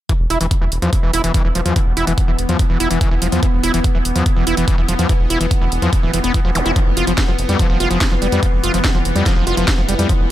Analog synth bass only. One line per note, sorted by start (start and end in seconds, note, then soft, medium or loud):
0.20 0.27 E1 medium
0.30 0.37 E1 loud
0.41 0.48 E1 medium
0.61 0.69 E1 medium
0.72 0.79 E1 loud
0.82 0.89 E2 loud
1.03 1.10 E1 medium
1.14 1.21 E1 loud
1.24 1.31 E1 medium
1.45 1.52 E1 medium
1.55 1.62 E1 loud
1.66 1.73 E2 medium
1.86 1.94 E1 medium
1.97 2.04 E1 loud
2.07 2.14 E1 medium
2.28 2.35 E1 medium
2.39 2.46 E1 loud
2.49 2.56 E2 medium
2.70 2.77 E1 medium
2.80 2.87 E1 loud
2.91 2.98 E1 medium
3.11 3.19 E1 medium
3.22 3.29 E1 loud
3.32 3.39 E2 medium
3.53 3.60 E1 medium
3.64 3.71 E1 loud
3.74 3.81 E1 medium
3.95 4.02 E1 medium
4.05 4.12 E1 loud
4.16 4.23 E2 loud
4.36 4.44 E1 medium
4.47 4.54 E1 loud
4.57 4.64 E1 medium
4.78 4.85 E1 medium
4.89 4.96 E1 loud
4.99 5.06 E2 medium
5.20 5.27 E1 medium
5.30 5.37 E1 loud
5.41 5.48 E1 medium
5.61 5.69 E1 medium
5.72 5.79 E1 loud
5.82 5.89 E2 medium
6.03 6.10 D1 medium
6.14 6.21 E1 loud
6.24 6.31 E1 medium
6.45 6.52 E1 medium
6.55 6.62 E1 loud
6.66 6.73 E1 medium
6.86 6.94 F1 medium
6.97 7.04 F1 loud
7.07 7.14 F1 medium
7.28 7.35 F1 medium
7.39 7.46 F1 loud
7.49 7.56 F2 loud
7.70 7.77 F1 medium
7.80 7.87 F1 loud
7.91 7.98 F1 medium
8.11 8.19 F1 medium
8.22 8.29 F1 loud
8.32 8.39 F2 medium
8.53 8.60 F1 medium
8.64 8.71 F1 loud
8.74 8.81 F1 medium
8.95 9.02 F1 medium
9.05 9.12 F1 loud
9.16 9.23 F2 medium
9.36 9.44 F1 medium
9.47 9.54 F1 loud
9.57 9.64 F1 medium
9.78 9.85 F1 medium
9.89 9.96 F1 loud
9.99 10.06 F2 medium
10.20 10.27 F1 medium